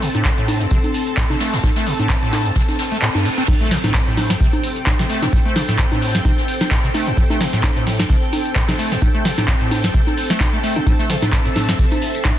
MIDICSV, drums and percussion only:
0, 0, Header, 1, 2, 480
1, 0, Start_track
1, 0, Key_signature, 0, "minor"
1, 0, Tempo, 461538
1, 1701, Time_signature, 4, 2, 24, 8
1, 12882, End_track
2, 0, Start_track
2, 0, Title_t, "Drums"
2, 22, Note_on_c, 9, 46, 96
2, 24, Note_on_c, 9, 54, 61
2, 126, Note_off_c, 9, 46, 0
2, 128, Note_off_c, 9, 54, 0
2, 154, Note_on_c, 9, 42, 67
2, 154, Note_on_c, 9, 63, 37
2, 257, Note_on_c, 9, 54, 85
2, 258, Note_off_c, 9, 42, 0
2, 258, Note_off_c, 9, 63, 0
2, 261, Note_on_c, 9, 36, 99
2, 261, Note_on_c, 9, 39, 110
2, 262, Note_on_c, 9, 38, 115
2, 361, Note_off_c, 9, 54, 0
2, 365, Note_off_c, 9, 36, 0
2, 365, Note_off_c, 9, 39, 0
2, 366, Note_off_c, 9, 38, 0
2, 394, Note_on_c, 9, 42, 53
2, 496, Note_on_c, 9, 54, 67
2, 498, Note_off_c, 9, 42, 0
2, 502, Note_on_c, 9, 46, 102
2, 502, Note_on_c, 9, 63, 58
2, 600, Note_off_c, 9, 54, 0
2, 606, Note_off_c, 9, 46, 0
2, 606, Note_off_c, 9, 63, 0
2, 623, Note_on_c, 9, 42, 43
2, 633, Note_off_c, 9, 42, 0
2, 633, Note_on_c, 9, 42, 66
2, 733, Note_on_c, 9, 54, 90
2, 737, Note_off_c, 9, 42, 0
2, 741, Note_on_c, 9, 36, 110
2, 837, Note_off_c, 9, 54, 0
2, 845, Note_off_c, 9, 36, 0
2, 873, Note_on_c, 9, 42, 53
2, 873, Note_on_c, 9, 63, 38
2, 977, Note_off_c, 9, 42, 0
2, 977, Note_off_c, 9, 63, 0
2, 981, Note_on_c, 9, 46, 98
2, 982, Note_on_c, 9, 54, 69
2, 1085, Note_off_c, 9, 46, 0
2, 1086, Note_off_c, 9, 54, 0
2, 1113, Note_on_c, 9, 42, 66
2, 1217, Note_off_c, 9, 42, 0
2, 1218, Note_on_c, 9, 54, 83
2, 1221, Note_on_c, 9, 36, 103
2, 1221, Note_on_c, 9, 39, 117
2, 1222, Note_on_c, 9, 38, 123
2, 1322, Note_off_c, 9, 54, 0
2, 1325, Note_off_c, 9, 36, 0
2, 1325, Note_off_c, 9, 39, 0
2, 1326, Note_off_c, 9, 38, 0
2, 1353, Note_on_c, 9, 63, 57
2, 1457, Note_off_c, 9, 63, 0
2, 1458, Note_on_c, 9, 38, 108
2, 1460, Note_on_c, 9, 54, 86
2, 1461, Note_on_c, 9, 46, 101
2, 1562, Note_off_c, 9, 38, 0
2, 1564, Note_off_c, 9, 54, 0
2, 1565, Note_off_c, 9, 46, 0
2, 1593, Note_on_c, 9, 38, 106
2, 1593, Note_on_c, 9, 42, 68
2, 1601, Note_on_c, 9, 54, 83
2, 1697, Note_off_c, 9, 38, 0
2, 1697, Note_off_c, 9, 42, 0
2, 1697, Note_on_c, 9, 38, 104
2, 1700, Note_on_c, 9, 63, 58
2, 1701, Note_on_c, 9, 36, 118
2, 1705, Note_off_c, 9, 54, 0
2, 1801, Note_off_c, 9, 38, 0
2, 1804, Note_off_c, 9, 63, 0
2, 1805, Note_off_c, 9, 36, 0
2, 1829, Note_on_c, 9, 54, 84
2, 1830, Note_on_c, 9, 38, 100
2, 1832, Note_on_c, 9, 42, 38
2, 1933, Note_off_c, 9, 54, 0
2, 1934, Note_off_c, 9, 38, 0
2, 1935, Note_on_c, 9, 54, 72
2, 1936, Note_off_c, 9, 42, 0
2, 1941, Note_on_c, 9, 46, 98
2, 2039, Note_off_c, 9, 54, 0
2, 2045, Note_off_c, 9, 46, 0
2, 2073, Note_on_c, 9, 42, 67
2, 2073, Note_on_c, 9, 63, 37
2, 2177, Note_off_c, 9, 42, 0
2, 2177, Note_off_c, 9, 63, 0
2, 2181, Note_on_c, 9, 36, 102
2, 2181, Note_on_c, 9, 39, 121
2, 2182, Note_on_c, 9, 38, 110
2, 2189, Note_on_c, 9, 46, 78
2, 2285, Note_off_c, 9, 36, 0
2, 2285, Note_off_c, 9, 39, 0
2, 2286, Note_off_c, 9, 38, 0
2, 2293, Note_off_c, 9, 46, 0
2, 2313, Note_on_c, 9, 42, 54
2, 2417, Note_off_c, 9, 42, 0
2, 2417, Note_on_c, 9, 38, 114
2, 2417, Note_on_c, 9, 54, 78
2, 2422, Note_on_c, 9, 39, 38
2, 2422, Note_on_c, 9, 46, 101
2, 2422, Note_on_c, 9, 63, 58
2, 2521, Note_off_c, 9, 38, 0
2, 2521, Note_off_c, 9, 54, 0
2, 2526, Note_off_c, 9, 39, 0
2, 2526, Note_off_c, 9, 46, 0
2, 2526, Note_off_c, 9, 63, 0
2, 2554, Note_on_c, 9, 42, 69
2, 2656, Note_on_c, 9, 38, 112
2, 2658, Note_off_c, 9, 42, 0
2, 2661, Note_on_c, 9, 36, 118
2, 2663, Note_on_c, 9, 54, 75
2, 2760, Note_off_c, 9, 38, 0
2, 2765, Note_off_c, 9, 36, 0
2, 2767, Note_off_c, 9, 54, 0
2, 2793, Note_on_c, 9, 42, 56
2, 2793, Note_on_c, 9, 63, 37
2, 2800, Note_on_c, 9, 38, 44
2, 2897, Note_off_c, 9, 42, 0
2, 2897, Note_off_c, 9, 63, 0
2, 2899, Note_on_c, 9, 54, 81
2, 2902, Note_off_c, 9, 38, 0
2, 2902, Note_on_c, 9, 38, 94
2, 2902, Note_on_c, 9, 46, 100
2, 3003, Note_off_c, 9, 54, 0
2, 3006, Note_off_c, 9, 38, 0
2, 3006, Note_off_c, 9, 46, 0
2, 3034, Note_on_c, 9, 46, 58
2, 3138, Note_off_c, 9, 46, 0
2, 3140, Note_on_c, 9, 54, 63
2, 3142, Note_on_c, 9, 39, 117
2, 3244, Note_off_c, 9, 54, 0
2, 3246, Note_off_c, 9, 39, 0
2, 3274, Note_on_c, 9, 42, 38
2, 3274, Note_on_c, 9, 63, 55
2, 3277, Note_off_c, 9, 42, 0
2, 3277, Note_on_c, 9, 42, 37
2, 3378, Note_off_c, 9, 63, 0
2, 3381, Note_off_c, 9, 42, 0
2, 3381, Note_on_c, 9, 54, 65
2, 3383, Note_on_c, 9, 46, 104
2, 3485, Note_off_c, 9, 54, 0
2, 3487, Note_off_c, 9, 46, 0
2, 3508, Note_on_c, 9, 38, 34
2, 3515, Note_on_c, 9, 42, 71
2, 3612, Note_off_c, 9, 38, 0
2, 3619, Note_off_c, 9, 42, 0
2, 3621, Note_on_c, 9, 36, 124
2, 3621, Note_on_c, 9, 49, 106
2, 3621, Note_on_c, 9, 54, 93
2, 3621, Note_on_c, 9, 63, 58
2, 3725, Note_off_c, 9, 36, 0
2, 3725, Note_off_c, 9, 49, 0
2, 3725, Note_off_c, 9, 54, 0
2, 3725, Note_off_c, 9, 63, 0
2, 3754, Note_on_c, 9, 42, 40
2, 3758, Note_on_c, 9, 38, 47
2, 3857, Note_on_c, 9, 54, 68
2, 3858, Note_off_c, 9, 42, 0
2, 3861, Note_off_c, 9, 38, 0
2, 3861, Note_on_c, 9, 38, 58
2, 3861, Note_on_c, 9, 46, 108
2, 3961, Note_off_c, 9, 54, 0
2, 3965, Note_off_c, 9, 38, 0
2, 3965, Note_off_c, 9, 46, 0
2, 3994, Note_on_c, 9, 38, 35
2, 3994, Note_on_c, 9, 42, 68
2, 3994, Note_on_c, 9, 63, 57
2, 4095, Note_off_c, 9, 38, 0
2, 4095, Note_on_c, 9, 38, 105
2, 4098, Note_off_c, 9, 42, 0
2, 4098, Note_off_c, 9, 63, 0
2, 4099, Note_on_c, 9, 54, 85
2, 4101, Note_on_c, 9, 36, 108
2, 4101, Note_on_c, 9, 39, 125
2, 4199, Note_off_c, 9, 38, 0
2, 4203, Note_off_c, 9, 54, 0
2, 4205, Note_off_c, 9, 36, 0
2, 4205, Note_off_c, 9, 39, 0
2, 4233, Note_on_c, 9, 42, 54
2, 4337, Note_off_c, 9, 42, 0
2, 4341, Note_on_c, 9, 38, 36
2, 4341, Note_on_c, 9, 46, 107
2, 4341, Note_on_c, 9, 54, 74
2, 4341, Note_on_c, 9, 63, 59
2, 4445, Note_off_c, 9, 38, 0
2, 4445, Note_off_c, 9, 46, 0
2, 4445, Note_off_c, 9, 54, 0
2, 4445, Note_off_c, 9, 63, 0
2, 4473, Note_on_c, 9, 38, 80
2, 4473, Note_on_c, 9, 42, 69
2, 4474, Note_off_c, 9, 42, 0
2, 4474, Note_on_c, 9, 42, 44
2, 4577, Note_off_c, 9, 38, 0
2, 4578, Note_off_c, 9, 42, 0
2, 4582, Note_on_c, 9, 36, 121
2, 4583, Note_on_c, 9, 54, 82
2, 4686, Note_off_c, 9, 36, 0
2, 4687, Note_off_c, 9, 54, 0
2, 4713, Note_on_c, 9, 42, 57
2, 4713, Note_on_c, 9, 63, 57
2, 4817, Note_off_c, 9, 42, 0
2, 4817, Note_off_c, 9, 63, 0
2, 4821, Note_on_c, 9, 46, 108
2, 4826, Note_on_c, 9, 54, 72
2, 4925, Note_off_c, 9, 46, 0
2, 4930, Note_off_c, 9, 54, 0
2, 4952, Note_on_c, 9, 42, 67
2, 5056, Note_off_c, 9, 42, 0
2, 5059, Note_on_c, 9, 54, 90
2, 5060, Note_on_c, 9, 39, 123
2, 5060, Note_on_c, 9, 63, 58
2, 5062, Note_on_c, 9, 36, 105
2, 5065, Note_on_c, 9, 38, 112
2, 5163, Note_off_c, 9, 54, 0
2, 5164, Note_off_c, 9, 39, 0
2, 5164, Note_off_c, 9, 63, 0
2, 5166, Note_off_c, 9, 36, 0
2, 5169, Note_off_c, 9, 38, 0
2, 5194, Note_on_c, 9, 38, 57
2, 5297, Note_on_c, 9, 54, 64
2, 5298, Note_off_c, 9, 38, 0
2, 5301, Note_on_c, 9, 46, 108
2, 5401, Note_off_c, 9, 54, 0
2, 5405, Note_off_c, 9, 46, 0
2, 5429, Note_on_c, 9, 38, 57
2, 5434, Note_off_c, 9, 38, 0
2, 5434, Note_on_c, 9, 38, 36
2, 5434, Note_on_c, 9, 42, 73
2, 5434, Note_on_c, 9, 63, 58
2, 5538, Note_off_c, 9, 38, 0
2, 5538, Note_off_c, 9, 42, 0
2, 5538, Note_off_c, 9, 63, 0
2, 5539, Note_on_c, 9, 54, 98
2, 5542, Note_on_c, 9, 36, 127
2, 5643, Note_off_c, 9, 54, 0
2, 5646, Note_off_c, 9, 36, 0
2, 5674, Note_on_c, 9, 42, 38
2, 5778, Note_off_c, 9, 42, 0
2, 5780, Note_on_c, 9, 54, 61
2, 5782, Note_on_c, 9, 38, 60
2, 5782, Note_on_c, 9, 46, 112
2, 5782, Note_on_c, 9, 63, 61
2, 5884, Note_off_c, 9, 54, 0
2, 5886, Note_off_c, 9, 38, 0
2, 5886, Note_off_c, 9, 46, 0
2, 5886, Note_off_c, 9, 63, 0
2, 5914, Note_on_c, 9, 38, 35
2, 5914, Note_on_c, 9, 42, 66
2, 6008, Note_off_c, 9, 38, 0
2, 6008, Note_on_c, 9, 38, 116
2, 6018, Note_off_c, 9, 42, 0
2, 6021, Note_on_c, 9, 39, 127
2, 6022, Note_on_c, 9, 36, 115
2, 6023, Note_on_c, 9, 46, 74
2, 6112, Note_off_c, 9, 38, 0
2, 6125, Note_off_c, 9, 39, 0
2, 6126, Note_off_c, 9, 36, 0
2, 6127, Note_off_c, 9, 46, 0
2, 6154, Note_on_c, 9, 42, 52
2, 6154, Note_on_c, 9, 63, 60
2, 6258, Note_off_c, 9, 42, 0
2, 6258, Note_off_c, 9, 63, 0
2, 6262, Note_on_c, 9, 46, 114
2, 6267, Note_on_c, 9, 54, 62
2, 6366, Note_off_c, 9, 46, 0
2, 6371, Note_off_c, 9, 54, 0
2, 6394, Note_on_c, 9, 38, 79
2, 6394, Note_on_c, 9, 42, 67
2, 6498, Note_off_c, 9, 38, 0
2, 6498, Note_off_c, 9, 42, 0
2, 6501, Note_on_c, 9, 36, 127
2, 6502, Note_on_c, 9, 63, 60
2, 6505, Note_on_c, 9, 54, 88
2, 6605, Note_off_c, 9, 36, 0
2, 6606, Note_off_c, 9, 63, 0
2, 6609, Note_off_c, 9, 54, 0
2, 6634, Note_on_c, 9, 38, 42
2, 6634, Note_on_c, 9, 42, 54
2, 6738, Note_off_c, 9, 38, 0
2, 6738, Note_off_c, 9, 42, 0
2, 6741, Note_on_c, 9, 46, 112
2, 6746, Note_on_c, 9, 54, 73
2, 6845, Note_off_c, 9, 46, 0
2, 6850, Note_off_c, 9, 54, 0
2, 6871, Note_on_c, 9, 42, 48
2, 6874, Note_off_c, 9, 42, 0
2, 6874, Note_on_c, 9, 38, 59
2, 6874, Note_on_c, 9, 42, 65
2, 6874, Note_on_c, 9, 63, 59
2, 6975, Note_off_c, 9, 38, 0
2, 6975, Note_on_c, 9, 38, 116
2, 6978, Note_off_c, 9, 42, 0
2, 6978, Note_off_c, 9, 63, 0
2, 6980, Note_on_c, 9, 54, 88
2, 6981, Note_on_c, 9, 36, 113
2, 6982, Note_on_c, 9, 39, 124
2, 7079, Note_off_c, 9, 38, 0
2, 7084, Note_off_c, 9, 54, 0
2, 7085, Note_off_c, 9, 36, 0
2, 7086, Note_off_c, 9, 39, 0
2, 7114, Note_on_c, 9, 42, 37
2, 7218, Note_off_c, 9, 42, 0
2, 7222, Note_on_c, 9, 46, 116
2, 7222, Note_on_c, 9, 63, 60
2, 7229, Note_on_c, 9, 54, 64
2, 7326, Note_off_c, 9, 46, 0
2, 7326, Note_off_c, 9, 63, 0
2, 7333, Note_off_c, 9, 54, 0
2, 7355, Note_on_c, 9, 42, 70
2, 7459, Note_off_c, 9, 42, 0
2, 7461, Note_on_c, 9, 36, 127
2, 7466, Note_on_c, 9, 54, 85
2, 7565, Note_off_c, 9, 36, 0
2, 7570, Note_off_c, 9, 54, 0
2, 7594, Note_on_c, 9, 42, 36
2, 7594, Note_on_c, 9, 63, 62
2, 7596, Note_on_c, 9, 38, 42
2, 7698, Note_off_c, 9, 42, 0
2, 7698, Note_off_c, 9, 63, 0
2, 7699, Note_on_c, 9, 54, 72
2, 7700, Note_off_c, 9, 38, 0
2, 7703, Note_on_c, 9, 38, 60
2, 7703, Note_on_c, 9, 46, 114
2, 7803, Note_off_c, 9, 54, 0
2, 7807, Note_off_c, 9, 38, 0
2, 7807, Note_off_c, 9, 46, 0
2, 7834, Note_on_c, 9, 38, 35
2, 7834, Note_on_c, 9, 42, 65
2, 7936, Note_on_c, 9, 54, 83
2, 7938, Note_off_c, 9, 38, 0
2, 7938, Note_off_c, 9, 42, 0
2, 7940, Note_on_c, 9, 38, 122
2, 7941, Note_on_c, 9, 36, 114
2, 7942, Note_on_c, 9, 39, 120
2, 7942, Note_on_c, 9, 63, 62
2, 8040, Note_off_c, 9, 54, 0
2, 8044, Note_off_c, 9, 38, 0
2, 8045, Note_off_c, 9, 36, 0
2, 8046, Note_off_c, 9, 39, 0
2, 8046, Note_off_c, 9, 63, 0
2, 8073, Note_on_c, 9, 42, 52
2, 8177, Note_off_c, 9, 42, 0
2, 8182, Note_on_c, 9, 38, 37
2, 8182, Note_on_c, 9, 46, 118
2, 8184, Note_on_c, 9, 54, 69
2, 8286, Note_off_c, 9, 38, 0
2, 8286, Note_off_c, 9, 46, 0
2, 8288, Note_off_c, 9, 54, 0
2, 8308, Note_on_c, 9, 42, 48
2, 8315, Note_off_c, 9, 42, 0
2, 8315, Note_on_c, 9, 38, 82
2, 8315, Note_on_c, 9, 42, 65
2, 8315, Note_on_c, 9, 63, 60
2, 8419, Note_off_c, 9, 38, 0
2, 8419, Note_off_c, 9, 42, 0
2, 8419, Note_off_c, 9, 63, 0
2, 8420, Note_on_c, 9, 54, 97
2, 8421, Note_on_c, 9, 36, 124
2, 8524, Note_off_c, 9, 54, 0
2, 8525, Note_off_c, 9, 36, 0
2, 8555, Note_on_c, 9, 42, 52
2, 8659, Note_off_c, 9, 42, 0
2, 8662, Note_on_c, 9, 46, 112
2, 8662, Note_on_c, 9, 63, 63
2, 8665, Note_on_c, 9, 54, 70
2, 8766, Note_off_c, 9, 46, 0
2, 8766, Note_off_c, 9, 63, 0
2, 8769, Note_off_c, 9, 54, 0
2, 8794, Note_on_c, 9, 42, 64
2, 8898, Note_off_c, 9, 42, 0
2, 8901, Note_on_c, 9, 36, 113
2, 8901, Note_on_c, 9, 38, 110
2, 8902, Note_on_c, 9, 39, 127
2, 8908, Note_on_c, 9, 54, 84
2, 9005, Note_off_c, 9, 36, 0
2, 9005, Note_off_c, 9, 38, 0
2, 9006, Note_off_c, 9, 39, 0
2, 9012, Note_off_c, 9, 54, 0
2, 9034, Note_on_c, 9, 38, 60
2, 9034, Note_on_c, 9, 63, 61
2, 9138, Note_off_c, 9, 38, 0
2, 9138, Note_off_c, 9, 63, 0
2, 9142, Note_on_c, 9, 46, 114
2, 9144, Note_on_c, 9, 54, 74
2, 9246, Note_off_c, 9, 46, 0
2, 9248, Note_off_c, 9, 54, 0
2, 9275, Note_on_c, 9, 38, 57
2, 9275, Note_on_c, 9, 42, 67
2, 9377, Note_on_c, 9, 54, 86
2, 9379, Note_off_c, 9, 38, 0
2, 9379, Note_off_c, 9, 42, 0
2, 9381, Note_on_c, 9, 36, 127
2, 9382, Note_on_c, 9, 63, 62
2, 9481, Note_off_c, 9, 54, 0
2, 9485, Note_off_c, 9, 36, 0
2, 9486, Note_off_c, 9, 63, 0
2, 9514, Note_on_c, 9, 42, 35
2, 9618, Note_off_c, 9, 42, 0
2, 9620, Note_on_c, 9, 54, 69
2, 9622, Note_on_c, 9, 38, 62
2, 9622, Note_on_c, 9, 46, 111
2, 9724, Note_off_c, 9, 54, 0
2, 9726, Note_off_c, 9, 38, 0
2, 9726, Note_off_c, 9, 46, 0
2, 9754, Note_on_c, 9, 38, 37
2, 9754, Note_on_c, 9, 42, 63
2, 9754, Note_on_c, 9, 63, 62
2, 9855, Note_on_c, 9, 46, 74
2, 9858, Note_off_c, 9, 38, 0
2, 9858, Note_off_c, 9, 42, 0
2, 9858, Note_off_c, 9, 63, 0
2, 9861, Note_on_c, 9, 36, 112
2, 9862, Note_on_c, 9, 38, 111
2, 9862, Note_on_c, 9, 39, 122
2, 9959, Note_off_c, 9, 46, 0
2, 9965, Note_off_c, 9, 36, 0
2, 9966, Note_off_c, 9, 38, 0
2, 9966, Note_off_c, 9, 39, 0
2, 9994, Note_on_c, 9, 42, 50
2, 10098, Note_off_c, 9, 42, 0
2, 10103, Note_on_c, 9, 46, 114
2, 10103, Note_on_c, 9, 63, 64
2, 10107, Note_on_c, 9, 54, 74
2, 10207, Note_off_c, 9, 46, 0
2, 10207, Note_off_c, 9, 63, 0
2, 10211, Note_off_c, 9, 54, 0
2, 10234, Note_on_c, 9, 38, 86
2, 10234, Note_on_c, 9, 42, 64
2, 10338, Note_off_c, 9, 38, 0
2, 10338, Note_off_c, 9, 42, 0
2, 10341, Note_on_c, 9, 36, 123
2, 10345, Note_on_c, 9, 54, 89
2, 10445, Note_off_c, 9, 36, 0
2, 10449, Note_off_c, 9, 54, 0
2, 10474, Note_on_c, 9, 38, 47
2, 10474, Note_on_c, 9, 42, 50
2, 10474, Note_on_c, 9, 63, 63
2, 10578, Note_off_c, 9, 38, 0
2, 10578, Note_off_c, 9, 42, 0
2, 10578, Note_off_c, 9, 63, 0
2, 10581, Note_on_c, 9, 46, 110
2, 10585, Note_on_c, 9, 54, 62
2, 10685, Note_off_c, 9, 46, 0
2, 10689, Note_off_c, 9, 54, 0
2, 10713, Note_on_c, 9, 38, 62
2, 10713, Note_on_c, 9, 42, 63
2, 10718, Note_off_c, 9, 42, 0
2, 10718, Note_on_c, 9, 42, 42
2, 10817, Note_off_c, 9, 38, 0
2, 10821, Note_on_c, 9, 36, 112
2, 10821, Note_on_c, 9, 39, 120
2, 10821, Note_on_c, 9, 63, 64
2, 10822, Note_off_c, 9, 42, 0
2, 10824, Note_on_c, 9, 38, 96
2, 10825, Note_on_c, 9, 54, 82
2, 10925, Note_off_c, 9, 36, 0
2, 10925, Note_off_c, 9, 39, 0
2, 10925, Note_off_c, 9, 63, 0
2, 10928, Note_off_c, 9, 38, 0
2, 10929, Note_off_c, 9, 54, 0
2, 10954, Note_on_c, 9, 42, 34
2, 11058, Note_off_c, 9, 42, 0
2, 11061, Note_on_c, 9, 46, 111
2, 11065, Note_on_c, 9, 54, 71
2, 11165, Note_off_c, 9, 46, 0
2, 11169, Note_off_c, 9, 54, 0
2, 11193, Note_on_c, 9, 42, 67
2, 11193, Note_on_c, 9, 63, 66
2, 11297, Note_off_c, 9, 42, 0
2, 11297, Note_off_c, 9, 63, 0
2, 11301, Note_on_c, 9, 36, 122
2, 11301, Note_on_c, 9, 54, 57
2, 11301, Note_on_c, 9, 63, 63
2, 11304, Note_off_c, 9, 54, 0
2, 11304, Note_on_c, 9, 54, 89
2, 11405, Note_off_c, 9, 36, 0
2, 11405, Note_off_c, 9, 63, 0
2, 11408, Note_off_c, 9, 54, 0
2, 11432, Note_on_c, 9, 38, 43
2, 11434, Note_on_c, 9, 42, 37
2, 11434, Note_on_c, 9, 54, 34
2, 11536, Note_off_c, 9, 38, 0
2, 11538, Note_off_c, 9, 42, 0
2, 11538, Note_off_c, 9, 54, 0
2, 11541, Note_on_c, 9, 38, 65
2, 11541, Note_on_c, 9, 46, 106
2, 11542, Note_on_c, 9, 54, 68
2, 11645, Note_off_c, 9, 38, 0
2, 11645, Note_off_c, 9, 46, 0
2, 11646, Note_off_c, 9, 54, 0
2, 11673, Note_on_c, 9, 38, 38
2, 11673, Note_on_c, 9, 42, 64
2, 11673, Note_on_c, 9, 54, 67
2, 11673, Note_on_c, 9, 63, 63
2, 11776, Note_off_c, 9, 38, 0
2, 11776, Note_on_c, 9, 38, 117
2, 11777, Note_off_c, 9, 42, 0
2, 11777, Note_off_c, 9, 54, 0
2, 11777, Note_off_c, 9, 63, 0
2, 11781, Note_on_c, 9, 36, 108
2, 11781, Note_on_c, 9, 54, 84
2, 11782, Note_off_c, 9, 54, 0
2, 11782, Note_on_c, 9, 39, 114
2, 11782, Note_on_c, 9, 54, 58
2, 11880, Note_off_c, 9, 38, 0
2, 11885, Note_off_c, 9, 36, 0
2, 11886, Note_off_c, 9, 39, 0
2, 11886, Note_off_c, 9, 54, 0
2, 11914, Note_on_c, 9, 42, 51
2, 11914, Note_on_c, 9, 54, 34
2, 12018, Note_off_c, 9, 42, 0
2, 12018, Note_off_c, 9, 54, 0
2, 12018, Note_on_c, 9, 54, 72
2, 12021, Note_on_c, 9, 38, 39
2, 12021, Note_on_c, 9, 46, 108
2, 12021, Note_on_c, 9, 63, 63
2, 12122, Note_off_c, 9, 54, 0
2, 12125, Note_off_c, 9, 38, 0
2, 12125, Note_off_c, 9, 46, 0
2, 12125, Note_off_c, 9, 63, 0
2, 12154, Note_on_c, 9, 38, 85
2, 12154, Note_on_c, 9, 42, 64
2, 12154, Note_on_c, 9, 54, 69
2, 12156, Note_off_c, 9, 42, 0
2, 12156, Note_on_c, 9, 42, 44
2, 12254, Note_off_c, 9, 54, 0
2, 12254, Note_on_c, 9, 54, 84
2, 12258, Note_off_c, 9, 38, 0
2, 12260, Note_off_c, 9, 42, 0
2, 12261, Note_on_c, 9, 36, 121
2, 12263, Note_off_c, 9, 54, 0
2, 12263, Note_on_c, 9, 54, 56
2, 12365, Note_off_c, 9, 36, 0
2, 12367, Note_off_c, 9, 54, 0
2, 12394, Note_on_c, 9, 42, 51
2, 12394, Note_on_c, 9, 54, 33
2, 12394, Note_on_c, 9, 63, 63
2, 12495, Note_off_c, 9, 54, 0
2, 12495, Note_on_c, 9, 54, 70
2, 12498, Note_off_c, 9, 42, 0
2, 12498, Note_off_c, 9, 63, 0
2, 12501, Note_on_c, 9, 46, 108
2, 12599, Note_off_c, 9, 54, 0
2, 12605, Note_off_c, 9, 46, 0
2, 12633, Note_on_c, 9, 42, 63
2, 12633, Note_on_c, 9, 54, 68
2, 12737, Note_off_c, 9, 42, 0
2, 12737, Note_off_c, 9, 54, 0
2, 12741, Note_on_c, 9, 36, 108
2, 12741, Note_on_c, 9, 39, 118
2, 12741, Note_on_c, 9, 54, 57
2, 12741, Note_on_c, 9, 63, 63
2, 12743, Note_on_c, 9, 38, 112
2, 12845, Note_off_c, 9, 36, 0
2, 12845, Note_off_c, 9, 39, 0
2, 12845, Note_off_c, 9, 54, 0
2, 12845, Note_off_c, 9, 63, 0
2, 12847, Note_off_c, 9, 38, 0
2, 12882, End_track
0, 0, End_of_file